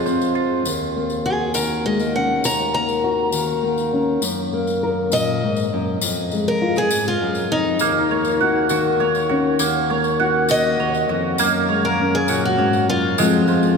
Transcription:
Already playing: nylon-string guitar F2 F3 G#4, mandolin G#3 F4, steel-string acoustic guitar C5
0.06 nylon-string guitar C4, mandolin C5, tambourine
0.21 tambourine
0.35 mandolin F4
0.65 nylon-string guitar D#2, tambourine
0.97 nylon-string guitar A#3
1.10 tambourine
1.26 nylon-string guitar F#4, steel-string acoustic guitar G#4
1.54 nylon-string guitar D#3, steel-string acoustic guitar A#4, tambourine
1.85 nylon-string guitar G#3, steel-string acoustic guitar D#5
1.99 nylon-string guitar A#3, tambourine
2.16 nylon-string guitar C#4, steel-string acoustic guitar F#5
2.44 nylon-string guitar D#2, steel-string acoustic guitar A#5, tambourine
2.74 nylon-string guitar A#3, steel-string acoustic guitar A#5
2.89 tambourine
3.04 nylon-string guitar F#4
3.32 nylon-string guitar D#3, tambourine
3.63 nylon-string guitar A#3
3.78 tambourine
3.93 nylon-string guitar C#4
4.22 nylon-string guitar F#2, tambourine
4.53 nylon-string guitar A#3
4.67 tambourine
4.83 nylon-string guitar A#4
5.12 nylon-string guitar A#2, steel-string acoustic guitar D#5, tambourine
5.43 nylon-string guitar G#2
5.56 tambourine
5.73 nylon-string guitar F#2
6.01 nylon-string guitar F2, tambourine
6.31 nylon-string guitar G#3, tambourine
6.48 steel-string acoustic guitar A#4
6.62 nylon-string guitar F4
6.76 nylon-string guitar G#4, steel-string acoustic guitar G#4, tambourine
6.90 nylon-string guitar G#2, tambourine
7.05 steel-string acoustic guitar F4, tambourine
7.22 nylon-string guitar F#2
7.35 tambourine
7.51 nylon-string guitar F2, steel-string acoustic guitar D#4
7.79 nylon-string guitar D#2, mandolin A#3, tambourine
8.11 nylon-string guitar A#3, mandolin C#5
8.24 tambourine
8.41 nylon-string guitar F#4, mandolin F#5
8.69 nylon-string guitar D#3, mandolin F#4, tambourine
9.00 nylon-string guitar A#3, mandolin C#5
9.15 tambourine
9.29 nylon-string guitar C#4, mandolin F#4
9.59 nylon-string guitar D#2, mandolin A#3, tambourine
9.90 nylon-string guitar A#3, mandolin C#5
10.04 tambourine
10.20 nylon-string guitar F#4, mandolin F#5
10.49 mandolin F#4, steel-string acoustic guitar D#5, tambourine
10.80 nylon-string guitar D#2, mandolin C#5
10.94 tambourine
11.09 nylon-string guitar F2, mandolin F#4
11.38 nylon-string guitar F#2, mandolin A#3, tambourine
11.69 nylon-string guitar G#3, mandolin C#5
11.85 nylon-string guitar A#3, steel-string acoustic guitar A#4
12.00 nylon-string guitar C#4
12.15 steel-string acoustic guitar G#4
12.28 nylon-string guitar A#2, mandolin F#4, tambourine
12.45 steel-string acoustic guitar F#4
12.58 nylon-string guitar G#2, mandolin C#5
12.73 tambourine
12.88 nylon-string guitar F#2, steel-string acoustic guitar F4
13.18 nylon-string guitar F2 F3 G#3 C4, mandolin G#3, tambourine
13.33 tambourine
13.48 nylon-string guitar G#3, mandolin C5, tambourine
13.63 tambourine

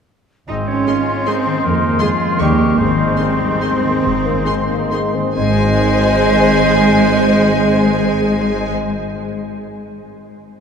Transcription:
0.48 double bass section G#1, harp G#2, bassoon G#3, oboe C4, cello section D#4, clarinet D#5, flute C6
0.67 harp G#3, cello section C#4, clarinet C#5
0.86 french horn section D#3 C4, viola section G#3, harp C4, oboe F4, violin section G#4 C6
1.07 harp G#4
1.26 french horn section D#3 C4, harp G#3, viola section G#3, cello section C4, oboe D#4, violin section G#4 C6, clarinet C5
1.46 harp D#3
1.63 double bass section F2, harp F3, cello section A#3, clarinet A#4
1.82 harp C4
2.00 french horn section F3 C4, cello section G#3, viola section G#3, oboe F4, violin section G#4 C6, harp G#4, clarinet G#4
2.21 harp C4
2.39 double bass section D#2, viola section D#3, harp D#3, french horn section G3 C#4, bassoon G3, cello section A#3, violin section G4 C#6, oboe G4, clarinet A#4, flute C#6
2.59 harp C#4 D#4
2.78 double bass section G#1, harp G#2, bassoon G#3, cello section C4, oboe D#4, clarinet C5, flute C6
2.98 harp G#3
3.17 viola section D#3, french horn section G#3, harp C4, violin section G#4 C6
3.39 french horn section G3, harp D#4
3.61 viola section D#3, french horn section G#3, violin section G#4 C6
3.83 harp D#3, french horn section A#3
4.03 double bass section G#1, harp G#2, french horn section C4
4.23 harp G#3, french horn section A#3
4.46 viola section D#3, french horn section G#3, harp C4, violin section G#4 C6
4.69 french horn section A#3, harp D#4
4.91 viola section D#3, french horn section G#3, harp G#3, violin section G#4 C6
5.14 harp D#3, french horn section C4
5.36 double bass section G#1, harp G#2, french horn section G#3 C4, bassoon G#3, cello section G#3, viola section G#3, clarinet G#4, oboe C5, violin section C5 G#5, flute D#5
5.44 harp G#3
5.51 harp C4
5.58 harp D#4
5.65 harp C5

